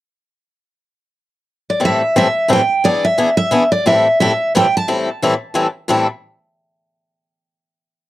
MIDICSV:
0, 0, Header, 1, 3, 480
1, 0, Start_track
1, 0, Key_signature, 0, "minor"
1, 0, Tempo, 341103
1, 1106, Time_signature, 3, 2, 24, 8
1, 11396, End_track
2, 0, Start_track
2, 0, Title_t, "Steel-string acoustic guitar"
2, 0, Program_c, 0, 25
2, 2390, Note_on_c, 0, 74, 58
2, 2551, Note_off_c, 0, 74, 0
2, 2604, Note_on_c, 0, 76, 74
2, 3024, Note_off_c, 0, 76, 0
2, 3066, Note_on_c, 0, 76, 77
2, 3495, Note_off_c, 0, 76, 0
2, 3555, Note_on_c, 0, 79, 79
2, 4008, Note_on_c, 0, 74, 86
2, 4024, Note_off_c, 0, 79, 0
2, 4286, Note_on_c, 0, 76, 79
2, 4296, Note_off_c, 0, 74, 0
2, 4727, Note_off_c, 0, 76, 0
2, 4744, Note_on_c, 0, 76, 85
2, 5195, Note_off_c, 0, 76, 0
2, 5231, Note_on_c, 0, 74, 77
2, 5409, Note_off_c, 0, 74, 0
2, 5448, Note_on_c, 0, 76, 93
2, 5897, Note_off_c, 0, 76, 0
2, 5914, Note_on_c, 0, 76, 81
2, 6355, Note_off_c, 0, 76, 0
2, 6426, Note_on_c, 0, 79, 88
2, 6702, Note_off_c, 0, 79, 0
2, 6710, Note_on_c, 0, 81, 80
2, 7783, Note_off_c, 0, 81, 0
2, 11396, End_track
3, 0, Start_track
3, 0, Title_t, "Steel-string acoustic guitar"
3, 0, Program_c, 1, 25
3, 2530, Note_on_c, 1, 45, 68
3, 2535, Note_on_c, 1, 55, 68
3, 2541, Note_on_c, 1, 52, 62
3, 2541, Note_on_c, 1, 60, 67
3, 2543, Note_on_c, 1, 69, 67
3, 2547, Note_on_c, 1, 64, 61
3, 2827, Note_off_c, 1, 45, 0
3, 2830, Note_off_c, 1, 55, 0
3, 2832, Note_off_c, 1, 52, 0
3, 2832, Note_off_c, 1, 60, 0
3, 2833, Note_off_c, 1, 69, 0
3, 2836, Note_off_c, 1, 64, 0
3, 3037, Note_on_c, 1, 45, 75
3, 3040, Note_on_c, 1, 52, 82
3, 3040, Note_on_c, 1, 55, 81
3, 3040, Note_on_c, 1, 60, 83
3, 3049, Note_on_c, 1, 64, 80
3, 3058, Note_on_c, 1, 69, 78
3, 3185, Note_off_c, 1, 45, 0
3, 3186, Note_off_c, 1, 52, 0
3, 3186, Note_off_c, 1, 55, 0
3, 3186, Note_off_c, 1, 60, 0
3, 3191, Note_off_c, 1, 64, 0
3, 3195, Note_off_c, 1, 69, 0
3, 3495, Note_on_c, 1, 45, 85
3, 3504, Note_on_c, 1, 52, 80
3, 3512, Note_on_c, 1, 55, 76
3, 3512, Note_on_c, 1, 60, 85
3, 3513, Note_on_c, 1, 64, 93
3, 3515, Note_on_c, 1, 69, 92
3, 3654, Note_off_c, 1, 45, 0
3, 3658, Note_off_c, 1, 52, 0
3, 3662, Note_off_c, 1, 55, 0
3, 3662, Note_off_c, 1, 60, 0
3, 3663, Note_off_c, 1, 64, 0
3, 3664, Note_off_c, 1, 69, 0
3, 3995, Note_on_c, 1, 59, 69
3, 4000, Note_on_c, 1, 52, 61
3, 4012, Note_on_c, 1, 62, 73
3, 4015, Note_on_c, 1, 68, 65
3, 4279, Note_off_c, 1, 59, 0
3, 4281, Note_off_c, 1, 52, 0
3, 4287, Note_off_c, 1, 62, 0
3, 4289, Note_off_c, 1, 68, 0
3, 4470, Note_on_c, 1, 52, 76
3, 4478, Note_on_c, 1, 59, 82
3, 4479, Note_on_c, 1, 68, 87
3, 4482, Note_on_c, 1, 62, 90
3, 4621, Note_off_c, 1, 52, 0
3, 4625, Note_off_c, 1, 59, 0
3, 4625, Note_off_c, 1, 68, 0
3, 4627, Note_off_c, 1, 62, 0
3, 4939, Note_on_c, 1, 52, 86
3, 4950, Note_on_c, 1, 62, 85
3, 4952, Note_on_c, 1, 59, 89
3, 4962, Note_on_c, 1, 68, 81
3, 5094, Note_off_c, 1, 52, 0
3, 5100, Note_off_c, 1, 62, 0
3, 5101, Note_off_c, 1, 59, 0
3, 5106, Note_off_c, 1, 68, 0
3, 5428, Note_on_c, 1, 45, 64
3, 5429, Note_on_c, 1, 60, 70
3, 5431, Note_on_c, 1, 55, 71
3, 5432, Note_on_c, 1, 52, 66
3, 5436, Note_on_c, 1, 69, 72
3, 5437, Note_on_c, 1, 64, 75
3, 5714, Note_off_c, 1, 45, 0
3, 5715, Note_off_c, 1, 55, 0
3, 5715, Note_off_c, 1, 60, 0
3, 5716, Note_off_c, 1, 52, 0
3, 5718, Note_off_c, 1, 69, 0
3, 5719, Note_off_c, 1, 64, 0
3, 5917, Note_on_c, 1, 45, 78
3, 5917, Note_on_c, 1, 52, 73
3, 5928, Note_on_c, 1, 55, 83
3, 5934, Note_on_c, 1, 64, 82
3, 5937, Note_on_c, 1, 69, 96
3, 5938, Note_on_c, 1, 60, 86
3, 6062, Note_off_c, 1, 52, 0
3, 6063, Note_off_c, 1, 45, 0
3, 6068, Note_off_c, 1, 55, 0
3, 6071, Note_off_c, 1, 64, 0
3, 6073, Note_off_c, 1, 60, 0
3, 6073, Note_off_c, 1, 69, 0
3, 6400, Note_on_c, 1, 45, 80
3, 6402, Note_on_c, 1, 52, 84
3, 6408, Note_on_c, 1, 60, 92
3, 6410, Note_on_c, 1, 69, 89
3, 6416, Note_on_c, 1, 64, 85
3, 6417, Note_on_c, 1, 55, 82
3, 6544, Note_off_c, 1, 45, 0
3, 6545, Note_off_c, 1, 52, 0
3, 6548, Note_off_c, 1, 60, 0
3, 6549, Note_off_c, 1, 69, 0
3, 6552, Note_off_c, 1, 55, 0
3, 6552, Note_off_c, 1, 64, 0
3, 6866, Note_on_c, 1, 45, 63
3, 6868, Note_on_c, 1, 60, 71
3, 6871, Note_on_c, 1, 55, 71
3, 6872, Note_on_c, 1, 52, 67
3, 6873, Note_on_c, 1, 64, 78
3, 6878, Note_on_c, 1, 69, 71
3, 7152, Note_off_c, 1, 45, 0
3, 7153, Note_off_c, 1, 60, 0
3, 7154, Note_off_c, 1, 55, 0
3, 7155, Note_off_c, 1, 52, 0
3, 7155, Note_off_c, 1, 64, 0
3, 7158, Note_off_c, 1, 69, 0
3, 7351, Note_on_c, 1, 45, 78
3, 7359, Note_on_c, 1, 52, 83
3, 7360, Note_on_c, 1, 55, 81
3, 7362, Note_on_c, 1, 60, 83
3, 7364, Note_on_c, 1, 64, 85
3, 7365, Note_on_c, 1, 69, 83
3, 7499, Note_off_c, 1, 45, 0
3, 7503, Note_off_c, 1, 52, 0
3, 7503, Note_off_c, 1, 55, 0
3, 7504, Note_off_c, 1, 60, 0
3, 7505, Note_off_c, 1, 64, 0
3, 7506, Note_off_c, 1, 69, 0
3, 7795, Note_on_c, 1, 45, 78
3, 7808, Note_on_c, 1, 60, 79
3, 7811, Note_on_c, 1, 52, 89
3, 7813, Note_on_c, 1, 64, 76
3, 7815, Note_on_c, 1, 55, 77
3, 7821, Note_on_c, 1, 69, 90
3, 7961, Note_off_c, 1, 45, 0
3, 7967, Note_off_c, 1, 60, 0
3, 7969, Note_off_c, 1, 52, 0
3, 7970, Note_off_c, 1, 64, 0
3, 7971, Note_off_c, 1, 55, 0
3, 7973, Note_off_c, 1, 69, 0
3, 8275, Note_on_c, 1, 45, 86
3, 8287, Note_on_c, 1, 52, 78
3, 8290, Note_on_c, 1, 55, 91
3, 8297, Note_on_c, 1, 60, 89
3, 8306, Note_on_c, 1, 64, 96
3, 8306, Note_on_c, 1, 69, 95
3, 8521, Note_off_c, 1, 45, 0
3, 8527, Note_off_c, 1, 52, 0
3, 8528, Note_off_c, 1, 55, 0
3, 8532, Note_off_c, 1, 60, 0
3, 8536, Note_off_c, 1, 64, 0
3, 8536, Note_off_c, 1, 69, 0
3, 11396, End_track
0, 0, End_of_file